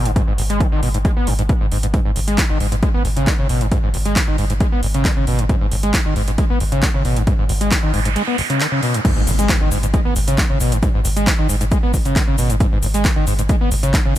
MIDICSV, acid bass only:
0, 0, Header, 1, 2, 480
1, 0, Start_track
1, 0, Key_signature, 5, "minor"
1, 0, Tempo, 444444
1, 173, Time_signature, 4, 2, 24, 8
1, 15319, End_track
2, 0, Start_track
2, 0, Title_t, "Acid bass"
2, 0, Program_c, 0, 38
2, 60, Note_on_c, 0, 44, 77
2, 122, Note_off_c, 0, 44, 0
2, 172, Note_on_c, 0, 44, 109
2, 242, Note_off_c, 0, 44, 0
2, 297, Note_on_c, 0, 44, 77
2, 361, Note_off_c, 0, 44, 0
2, 411, Note_on_c, 0, 32, 102
2, 454, Note_off_c, 0, 32, 0
2, 538, Note_on_c, 0, 56, 75
2, 651, Note_on_c, 0, 51, 99
2, 668, Note_off_c, 0, 56, 0
2, 721, Note_off_c, 0, 51, 0
2, 779, Note_on_c, 0, 51, 100
2, 873, Note_off_c, 0, 51, 0
2, 891, Note_on_c, 0, 47, 77
2, 961, Note_off_c, 0, 47, 0
2, 1019, Note_on_c, 0, 44, 78
2, 1056, Note_off_c, 0, 44, 0
2, 1133, Note_on_c, 0, 56, 83
2, 1202, Note_off_c, 0, 56, 0
2, 1260, Note_on_c, 0, 59, 78
2, 1375, Note_on_c, 0, 42, 80
2, 1391, Note_off_c, 0, 59, 0
2, 1443, Note_off_c, 0, 42, 0
2, 1500, Note_on_c, 0, 44, 98
2, 1537, Note_off_c, 0, 44, 0
2, 1614, Note_on_c, 0, 47, 98
2, 1655, Note_off_c, 0, 47, 0
2, 1740, Note_on_c, 0, 44, 75
2, 1802, Note_off_c, 0, 44, 0
2, 1853, Note_on_c, 0, 44, 78
2, 1923, Note_off_c, 0, 44, 0
2, 1978, Note_on_c, 0, 44, 75
2, 2016, Note_off_c, 0, 44, 0
2, 2091, Note_on_c, 0, 44, 105
2, 2161, Note_off_c, 0, 44, 0
2, 2218, Note_on_c, 0, 44, 81
2, 2281, Note_off_c, 0, 44, 0
2, 2331, Note_on_c, 0, 32, 101
2, 2374, Note_off_c, 0, 32, 0
2, 2457, Note_on_c, 0, 56, 75
2, 2571, Note_on_c, 0, 51, 102
2, 2587, Note_off_c, 0, 56, 0
2, 2641, Note_off_c, 0, 51, 0
2, 2697, Note_on_c, 0, 51, 97
2, 2792, Note_off_c, 0, 51, 0
2, 2812, Note_on_c, 0, 44, 78
2, 2882, Note_off_c, 0, 44, 0
2, 2937, Note_on_c, 0, 44, 76
2, 2975, Note_off_c, 0, 44, 0
2, 3052, Note_on_c, 0, 56, 86
2, 3122, Note_off_c, 0, 56, 0
2, 3177, Note_on_c, 0, 59, 78
2, 3272, Note_off_c, 0, 59, 0
2, 3291, Note_on_c, 0, 32, 105
2, 3333, Note_off_c, 0, 32, 0
2, 3419, Note_on_c, 0, 49, 102
2, 3532, Note_on_c, 0, 51, 101
2, 3548, Note_off_c, 0, 49, 0
2, 3602, Note_off_c, 0, 51, 0
2, 3659, Note_on_c, 0, 49, 100
2, 3753, Note_off_c, 0, 49, 0
2, 3773, Note_on_c, 0, 47, 77
2, 3898, Note_on_c, 0, 44, 78
2, 3914, Note_off_c, 0, 47, 0
2, 3961, Note_off_c, 0, 44, 0
2, 4012, Note_on_c, 0, 44, 105
2, 4082, Note_off_c, 0, 44, 0
2, 4139, Note_on_c, 0, 44, 77
2, 4202, Note_off_c, 0, 44, 0
2, 4253, Note_on_c, 0, 32, 106
2, 4294, Note_off_c, 0, 32, 0
2, 4380, Note_on_c, 0, 56, 74
2, 4493, Note_on_c, 0, 51, 102
2, 4509, Note_off_c, 0, 56, 0
2, 4562, Note_off_c, 0, 51, 0
2, 4619, Note_on_c, 0, 51, 97
2, 4713, Note_off_c, 0, 51, 0
2, 4733, Note_on_c, 0, 44, 79
2, 4802, Note_off_c, 0, 44, 0
2, 4860, Note_on_c, 0, 44, 78
2, 4897, Note_off_c, 0, 44, 0
2, 4974, Note_on_c, 0, 56, 83
2, 5043, Note_off_c, 0, 56, 0
2, 5100, Note_on_c, 0, 59, 78
2, 5193, Note_off_c, 0, 59, 0
2, 5214, Note_on_c, 0, 32, 102
2, 5255, Note_off_c, 0, 32, 0
2, 5340, Note_on_c, 0, 49, 102
2, 5454, Note_on_c, 0, 51, 100
2, 5471, Note_off_c, 0, 49, 0
2, 5523, Note_off_c, 0, 51, 0
2, 5580, Note_on_c, 0, 49, 99
2, 5673, Note_off_c, 0, 49, 0
2, 5695, Note_on_c, 0, 47, 78
2, 5822, Note_on_c, 0, 44, 79
2, 5838, Note_off_c, 0, 47, 0
2, 5883, Note_off_c, 0, 44, 0
2, 5935, Note_on_c, 0, 44, 106
2, 6003, Note_off_c, 0, 44, 0
2, 6061, Note_on_c, 0, 44, 78
2, 6123, Note_off_c, 0, 44, 0
2, 6174, Note_on_c, 0, 32, 103
2, 6215, Note_off_c, 0, 32, 0
2, 6300, Note_on_c, 0, 56, 77
2, 6414, Note_on_c, 0, 51, 103
2, 6430, Note_off_c, 0, 56, 0
2, 6483, Note_off_c, 0, 51, 0
2, 6541, Note_on_c, 0, 51, 100
2, 6634, Note_off_c, 0, 51, 0
2, 6653, Note_on_c, 0, 44, 79
2, 6722, Note_off_c, 0, 44, 0
2, 6779, Note_on_c, 0, 44, 75
2, 6817, Note_off_c, 0, 44, 0
2, 6895, Note_on_c, 0, 56, 85
2, 6963, Note_off_c, 0, 56, 0
2, 7020, Note_on_c, 0, 59, 74
2, 7113, Note_off_c, 0, 59, 0
2, 7133, Note_on_c, 0, 32, 109
2, 7175, Note_off_c, 0, 32, 0
2, 7259, Note_on_c, 0, 49, 101
2, 7373, Note_on_c, 0, 51, 100
2, 7389, Note_off_c, 0, 49, 0
2, 7442, Note_off_c, 0, 51, 0
2, 7499, Note_on_c, 0, 49, 97
2, 7593, Note_off_c, 0, 49, 0
2, 7612, Note_on_c, 0, 47, 76
2, 7739, Note_on_c, 0, 44, 77
2, 7755, Note_off_c, 0, 47, 0
2, 7801, Note_off_c, 0, 44, 0
2, 7852, Note_on_c, 0, 44, 109
2, 7922, Note_off_c, 0, 44, 0
2, 7979, Note_on_c, 0, 44, 78
2, 8041, Note_off_c, 0, 44, 0
2, 8092, Note_on_c, 0, 32, 104
2, 8134, Note_off_c, 0, 32, 0
2, 8217, Note_on_c, 0, 56, 78
2, 8331, Note_on_c, 0, 51, 100
2, 8347, Note_off_c, 0, 56, 0
2, 8401, Note_off_c, 0, 51, 0
2, 8457, Note_on_c, 0, 51, 97
2, 8552, Note_off_c, 0, 51, 0
2, 8571, Note_on_c, 0, 44, 82
2, 8641, Note_off_c, 0, 44, 0
2, 8697, Note_on_c, 0, 44, 80
2, 8735, Note_off_c, 0, 44, 0
2, 8811, Note_on_c, 0, 56, 86
2, 8881, Note_off_c, 0, 56, 0
2, 8937, Note_on_c, 0, 59, 78
2, 9032, Note_off_c, 0, 59, 0
2, 9051, Note_on_c, 0, 32, 110
2, 9093, Note_off_c, 0, 32, 0
2, 9177, Note_on_c, 0, 49, 97
2, 9290, Note_on_c, 0, 51, 96
2, 9306, Note_off_c, 0, 49, 0
2, 9361, Note_off_c, 0, 51, 0
2, 9416, Note_on_c, 0, 49, 98
2, 9511, Note_off_c, 0, 49, 0
2, 9531, Note_on_c, 0, 47, 77
2, 9657, Note_on_c, 0, 44, 79
2, 9673, Note_off_c, 0, 47, 0
2, 9721, Note_off_c, 0, 44, 0
2, 9771, Note_on_c, 0, 44, 103
2, 9841, Note_off_c, 0, 44, 0
2, 9898, Note_on_c, 0, 44, 81
2, 9961, Note_off_c, 0, 44, 0
2, 10012, Note_on_c, 0, 32, 101
2, 10054, Note_off_c, 0, 32, 0
2, 10138, Note_on_c, 0, 56, 80
2, 10252, Note_on_c, 0, 51, 104
2, 10268, Note_off_c, 0, 56, 0
2, 10322, Note_off_c, 0, 51, 0
2, 10378, Note_on_c, 0, 51, 102
2, 10472, Note_off_c, 0, 51, 0
2, 10492, Note_on_c, 0, 44, 77
2, 10562, Note_off_c, 0, 44, 0
2, 10617, Note_on_c, 0, 44, 80
2, 10656, Note_off_c, 0, 44, 0
2, 10730, Note_on_c, 0, 56, 84
2, 10801, Note_off_c, 0, 56, 0
2, 10857, Note_on_c, 0, 59, 77
2, 10952, Note_off_c, 0, 59, 0
2, 10971, Note_on_c, 0, 32, 106
2, 11014, Note_off_c, 0, 32, 0
2, 11097, Note_on_c, 0, 49, 99
2, 11211, Note_on_c, 0, 51, 104
2, 11228, Note_off_c, 0, 49, 0
2, 11281, Note_off_c, 0, 51, 0
2, 11339, Note_on_c, 0, 49, 101
2, 11433, Note_off_c, 0, 49, 0
2, 11452, Note_on_c, 0, 47, 75
2, 11578, Note_on_c, 0, 44, 77
2, 11594, Note_off_c, 0, 47, 0
2, 11641, Note_off_c, 0, 44, 0
2, 11691, Note_on_c, 0, 44, 107
2, 11761, Note_off_c, 0, 44, 0
2, 11819, Note_on_c, 0, 44, 82
2, 11882, Note_off_c, 0, 44, 0
2, 11931, Note_on_c, 0, 32, 102
2, 11974, Note_off_c, 0, 32, 0
2, 12057, Note_on_c, 0, 56, 75
2, 12171, Note_on_c, 0, 51, 107
2, 12187, Note_off_c, 0, 56, 0
2, 12241, Note_off_c, 0, 51, 0
2, 12298, Note_on_c, 0, 51, 101
2, 12392, Note_off_c, 0, 51, 0
2, 12411, Note_on_c, 0, 44, 77
2, 12481, Note_off_c, 0, 44, 0
2, 12538, Note_on_c, 0, 44, 78
2, 12576, Note_off_c, 0, 44, 0
2, 12652, Note_on_c, 0, 56, 83
2, 12722, Note_off_c, 0, 56, 0
2, 12778, Note_on_c, 0, 59, 77
2, 12872, Note_off_c, 0, 59, 0
2, 12891, Note_on_c, 0, 32, 104
2, 12933, Note_off_c, 0, 32, 0
2, 13018, Note_on_c, 0, 49, 97
2, 13131, Note_on_c, 0, 51, 104
2, 13147, Note_off_c, 0, 49, 0
2, 13201, Note_off_c, 0, 51, 0
2, 13257, Note_on_c, 0, 49, 102
2, 13352, Note_off_c, 0, 49, 0
2, 13372, Note_on_c, 0, 47, 81
2, 13497, Note_on_c, 0, 44, 79
2, 13513, Note_off_c, 0, 47, 0
2, 13560, Note_off_c, 0, 44, 0
2, 13611, Note_on_c, 0, 44, 107
2, 13681, Note_off_c, 0, 44, 0
2, 13738, Note_on_c, 0, 44, 79
2, 13801, Note_off_c, 0, 44, 0
2, 13852, Note_on_c, 0, 32, 105
2, 13894, Note_off_c, 0, 32, 0
2, 13977, Note_on_c, 0, 56, 79
2, 14090, Note_on_c, 0, 51, 104
2, 14106, Note_off_c, 0, 56, 0
2, 14161, Note_off_c, 0, 51, 0
2, 14217, Note_on_c, 0, 51, 103
2, 14312, Note_off_c, 0, 51, 0
2, 14332, Note_on_c, 0, 44, 81
2, 14402, Note_off_c, 0, 44, 0
2, 14458, Note_on_c, 0, 44, 81
2, 14496, Note_off_c, 0, 44, 0
2, 14571, Note_on_c, 0, 56, 83
2, 14641, Note_off_c, 0, 56, 0
2, 14698, Note_on_c, 0, 59, 79
2, 14792, Note_off_c, 0, 59, 0
2, 14811, Note_on_c, 0, 32, 110
2, 14853, Note_off_c, 0, 32, 0
2, 14938, Note_on_c, 0, 49, 100
2, 15053, Note_on_c, 0, 51, 100
2, 15069, Note_off_c, 0, 49, 0
2, 15122, Note_off_c, 0, 51, 0
2, 15179, Note_on_c, 0, 49, 99
2, 15273, Note_off_c, 0, 49, 0
2, 15319, End_track
0, 0, End_of_file